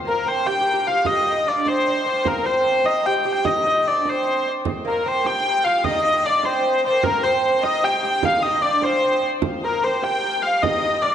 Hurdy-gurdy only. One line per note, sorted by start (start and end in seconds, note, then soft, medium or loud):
0.08 0.28 A#4 medium
0.28 0.46 C5 medium
0.46 0.87 G5 medium
0.87 1.07 F5 medium
1.06 1.48 D#5 loud
1.48 1.68 D5 medium
1.68 2.07 C5 medium
2.07 2.27 C5 medium
2.27 2.47 A#4 medium
2.46 2.86 C5 medium
2.85 3.06 D#5 medium
3.06 3.25 G5 medium
3.25 3.45 G5 medium
3.45 3.87 D#5 medium
3.87 4.09 D5 medium
4.09 4.49 C5 medium
4.88 5.08 A#4 medium
5.08 5.26 C5 medium
5.26 5.64 G5 loud
5.64 5.85 F5 loud
5.84 6.26 D#5 loud
6.26 6.45 D5 medium
6.45 6.85 C5 medium
6.85 7.03 C5 medium
7.03 7.23 A#4 loud
7.23 7.64 C5 medium
7.63 7.84 D#5 medium
7.84 8.04 G5 medium
8.04 8.25 G5 medium
8.25 8.45 F5 loud
8.43 8.63 D#5 medium
8.62 8.83 D5 medium
8.83 9.25 C5 medium
9.65 9.84 A#4 medium
9.84 10.04 C5 medium
10.04 10.42 G5 medium
10.42 10.62 F5 medium
10.62 11.02 D#5 loud
11.02 11.15 D5 medium